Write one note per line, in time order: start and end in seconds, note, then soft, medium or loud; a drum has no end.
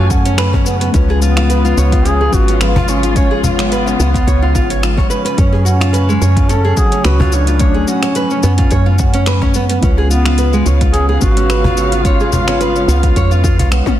0.00 0.90 F#2 loud
0.00 0.90 A2 medium
0.00 9.79 C#3 medium
0.00 0.63 F#3 medium
0.00 0.90 F#3 medium
0.00 0.62 A3 medium
0.00 0.62 C#4 medium
0.00 0.90 C#4 medium
0.00 0.11 F#4 loud
0.00 0.92 G#5 medium
0.10 0.63 C#4 medium
0.10 0.25 F#4 medium
0.10 kick loud
0.10 shaker medium
0.26 0.37 C#4 loud
0.26 closed hi-hat medium
0.26 shaker soft
0.38 0.52 B4 loud
0.38 finger snap medium
0.38 closed hi-hat soft
0.38 shaker soft
0.53 0.65 C#4 loud
0.53 kick medium
0.53 cajon slap medium
0.66 0.75 B3 medium
0.66 shaker medium
0.81 0.88 B3 medium
0.81 closed hi-hat medium
0.81 shaker soft
0.92 1.74 C#2 loud
0.92 5.34 F3 medium
0.92 2.29 G#3 medium
0.92 5.34 G#3 medium
0.92 3.14 B3 medium
0.92 2.29 C#4 medium
0.92 1.08 C#4 medium
0.92 5.34 F4 medium
0.92 2.30 F4 medium
0.92 kick loud
0.92 closed hi-hat soft
0.92 shaker soft
0.96 2.31 B4 loud
1.09 1.21 G#4 loud
1.09 cajon slap soft
1.22 2.07 B3 loud
1.22 1.36 F4 medium
1.22 shaker medium
1.37 1.49 F4 loud
1.37 finger snap medium
1.37 closed hi-hat medium
1.37 shaker soft
1.50 1.64 B4 medium
1.50 closed hi-hat soft
1.50 shaker soft
1.65 1.77 F4 loud
1.65 shaker soft
1.77 2.29 C#2 medium
1.77 1.92 C#5 medium
1.77 cajon slap soft
1.77 shaker medium
1.92 2.04 F4 medium
1.92 kick loud
1.92 closed hi-hat medium
1.92 shaker soft
2.05 2.19 C#4 medium
2.05 2.35 G#4 loud
2.05 cajon slap medium
2.05 closed hi-hat soft
2.05 shaker soft
2.21 2.32 G#4 loud
2.30 3.96 G#1 medium
2.30 3.12 G#3 medium
2.30 3.13 C#4 medium
2.30 3.13 F4 medium
2.30 2.48 F4 medium
2.30 2.54 F#4 loud
2.30 3.14 B4 loud
2.30 kick loud
2.30 shaker medium
2.48 2.60 C#4 medium
2.48 closed hi-hat medium
2.48 shaker soft
2.54 2.62 F#4 medium
2.61 2.91 F4 loud
2.61 2.75 B4 medium
2.61 finger snap medium
2.61 closed hi-hat soft
2.61 shaker soft
2.76 2.88 F4 loud
2.76 cajon bass medium
2.88 3.16 C#4 medium
2.88 3.03 C#5 medium
2.88 shaker medium
3.03 3.15 F4 medium
3.03 closed hi-hat medium
3.03 shaker soft
3.14 5.07 G#3 medium
3.14 9.78 C#4 medium
3.14 5.07 C#4 medium
3.14 3.29 C#4 loud
3.14 5.08 F4 medium
3.14 3.31 C#5 loud
3.14 kick loud
3.14 closed hi-hat soft
3.14 shaker soft
3.18 5.09 C#5 medium
3.31 3.43 G#4 loud
3.44 5.07 B3 loud
3.44 3.58 F4 medium
3.44 cajon bass medium
3.44 shaker medium
3.59 3.70 C#4 loud
3.59 finger snap medium
3.59 closed hi-hat medium
3.59 shaker soft
3.72 3.86 B4 medium
3.72 closed hi-hat soft
3.72 shaker soft
3.86 3.94 C#4 medium
3.86 shaker soft
3.99 4.23 C#2 medium
3.99 4.08 B3 loud
3.99 cajon slap soft
3.99 shaker medium
4.14 4.26 F4 loud
4.14 kick loud
4.14 closed hi-hat medium
4.14 shaker soft
4.27 4.56 C#2 medium
4.27 4.41 C#5 loud
4.27 kick medium
4.27 closed hi-hat soft
4.27 shaker soft
4.42 4.54 F4 loud
4.55 5.07 G#1 medium
4.55 4.69 F4 medium
4.55 kick loud
4.55 shaker medium
4.70 4.82 C#5 medium
4.70 closed hi-hat medium
4.70 shaker soft
4.83 4.96 F4 medium
4.83 finger snap medium
4.83 closed hi-hat soft
4.83 shaker soft
4.97 5.09 C#5 medium
4.97 kick medium
4.97 cajon slap medium
5.10 5.24 B4 medium
5.10 shaker medium
5.25 5.37 B4 medium
5.25 closed hi-hat medium
5.25 shaker soft
5.38 6.18 F#2 loud
5.38 9.79 A2 medium
5.38 9.79 F#3 medium
5.38 6.74 F#3 medium
5.38 5.51 C#4 medium
5.38 6.74 C#4 medium
5.38 6.75 C#5 loud
5.38 kick loud
5.38 closed hi-hat soft
5.38 shaker soft
5.53 5.65 G#4 loud
5.53 cajon slap soft
5.65 6.52 C#4 loud
5.65 5.80 F#4 medium
5.65 shaker medium
5.80 5.93 F4 loud
5.80 finger snap medium
5.80 closed hi-hat medium
5.80 shaker soft
5.93 6.08 B4 loud
5.93 closed hi-hat soft
5.93 shaker soft
6.09 6.21 G#3 medium
6.09 shaker soft
6.21 6.74 F#2 medium
6.21 6.36 C#5 medium
6.21 cajon slap soft
6.21 shaker medium
6.36 6.48 F4 medium
6.36 kick loud
6.36 closed hi-hat medium
6.36 shaker soft
6.49 6.63 C#4 medium
6.49 6.81 A4 loud
6.49 cajon slap medium
6.49 closed hi-hat soft
6.49 shaker soft
6.65 6.77 G#4 loud
6.76 7.58 F#3 medium
6.76 7.57 C#4 medium
6.76 6.91 F#4 medium
6.76 7.08 G#4 loud
6.76 7.58 C#5 loud
6.76 kick loud
6.76 shaker medium
6.92 7.03 C#4 medium
6.92 closed hi-hat medium
6.92 shaker soft
7.04 7.85 C#2 medium
7.04 7.36 F#4 loud
7.04 7.19 B4 loud
7.04 finger snap medium
7.04 closed hi-hat soft
7.04 shaker soft
7.20 7.32 F4 loud
7.20 cajon bass medium
7.32 7.61 D4 medium
7.32 7.47 C#5 medium
7.32 shaker medium
7.47 7.59 F4 medium
7.47 closed hi-hat soft
7.47 shaker soft
7.58 9.52 F#3 medium
7.58 9.51 A3 medium
7.58 9.52 C#4 medium
7.58 7.90 D4 medium
7.58 7.75 C#5 loud
7.58 kick loud
7.58 closed hi-hat soft
7.58 shaker soft
7.74 7.87 G#4 loud
7.88 9.55 C#4 loud
7.88 8.02 F#4 medium
7.88 shaker medium
8.03 8.15 C#4 loud
8.03 finger snap medium
8.03 closed hi-hat medium
8.03 shaker soft
8.15 8.30 B4 loud
8.15 closed hi-hat soft
8.15 shaker soft
8.30 8.38 C#4 medium
8.30 shaker soft
8.43 8.67 F#2 medium
8.43 8.52 B3 loud
8.43 cajon slap soft
8.43 shaker medium
8.58 8.71 F4 loud
8.58 kick loud
8.58 closed hi-hat medium
8.58 shaker soft
8.71 9.79 F#2 loud
8.71 8.86 C#5 loud
8.71 kick medium
8.71 closed hi-hat soft
8.71 shaker soft
8.86 8.98 F4 loud
8.99 9.14 F#4 medium
8.99 kick loud
8.99 shaker medium
9.14 9.26 C#4 loud
9.14 closed hi-hat medium
9.14 shaker soft
9.26 9.41 B4 loud
9.26 finger snap medium
9.26 closed hi-hat soft
9.26 shaker soft
9.42 9.54 C#4 loud
9.42 kick medium
9.42 cajon slap medium
9.54 9.64 B3 loud
9.54 shaker medium
9.70 9.77 B3 medium
9.70 closed hi-hat medium
9.70 shaker soft
9.80 10.63 C#2 loud
9.80 14.00 C#3 medium
9.80 11.17 G#3 medium
9.80 14.00 G#3 medium
9.80 14.00 B3 medium
9.80 11.18 C#4 medium
9.80 9.96 C#4 medium
9.80 11.19 F4 medium
9.80 14.00 F5 medium
9.80 kick loud
9.80 closed hi-hat soft
9.80 shaker soft
9.84 11.19 B4 loud
9.97 10.10 G#4 loud
9.97 cajon slap soft
10.10 10.62 B3 loud
10.10 10.24 F4 medium
10.10 shaker medium
10.25 10.38 F4 loud
10.25 finger snap medium
10.25 closed hi-hat medium
10.25 shaker soft
10.38 10.52 B4 loud
10.38 closed hi-hat soft
10.38 shaker soft
10.53 10.65 G#3 medium
10.53 shaker soft
10.66 11.18 C#2 medium
10.66 10.80 C#5 medium
10.66 cajon slap soft
10.66 shaker medium
10.81 10.93 F4 medium
10.81 kick loud
10.81 closed hi-hat medium
10.81 shaker soft
10.93 11.07 C#4 medium
10.93 11.06 G#4 loud
10.93 cajon slap medium
10.93 closed hi-hat soft
10.93 shaker soft
11.09 11.21 G#4 loud
11.20 12.85 G#1 medium
11.20 12.01 G#3 medium
11.20 12.01 C#4 medium
11.20 11.36 F4 medium
11.20 12.06 F#4 loud
11.20 12.03 B4 loud
11.20 12.02 F5 medium
11.20 kick loud
11.20 shaker medium
11.37 11.48 C#4 medium
11.37 closed hi-hat medium
11.37 shaker soft
11.49 11.64 B4 loud
11.49 finger snap medium
11.49 closed hi-hat soft
11.49 shaker soft
11.64 11.77 F4 loud
11.64 cajon bass medium
11.77 11.92 C#5 medium
11.77 shaker medium
11.92 12.04 F4 medium
11.92 closed hi-hat medium
11.92 shaker soft
12.03 13.95 G#3 medium
12.03 13.96 C#4 medium
12.03 13.71 F4 loud
12.03 13.97 F4 medium
12.03 12.20 C#5 loud
12.03 kick loud
12.03 closed hi-hat medium
12.03 shaker soft
12.07 13.97 C#5 medium
12.20 12.32 G#4 loud
12.20 shaker soft
12.32 12.47 F4 medium
12.32 cajon bass medium
12.32 shaker medium
12.48 12.59 C#4 loud
12.48 finger snap medium
12.48 closed hi-hat medium
12.48 shaker soft
12.61 12.75 B4 loud
12.61 closed hi-hat soft
12.61 shaker soft
12.76 12.83 C#4 medium
12.76 shaker soft
12.88 13.12 C#2 medium
12.88 12.97 B3 loud
12.88 cajon slap soft
12.88 shaker medium
13.03 13.15 F4 loud
13.03 kick loud
13.03 closed hi-hat medium
13.03 shaker soft
13.16 13.43 F2 medium
13.16 13.31 C#5 loud
13.16 kick medium
13.16 closed hi-hat soft
13.16 shaker soft
13.31 13.43 F4 loud
13.31 shaker soft
13.44 13.60 F2 medium
13.44 13.57 F4 medium
13.44 kick loud
13.44 shaker medium
13.59 13.82 B1 loud
13.59 13.70 F4 medium
13.59 cajon bass medium
13.59 closed hi-hat medium
13.59 shaker soft
13.72 13.85 B3 medium
13.72 finger snap medium
13.72 closed hi-hat soft
13.72 shaker soft
13.86 13.94 C#4 medium
13.86 kick medium
13.86 cajon slap medium
13.86 high tom soft
13.86 shaker soft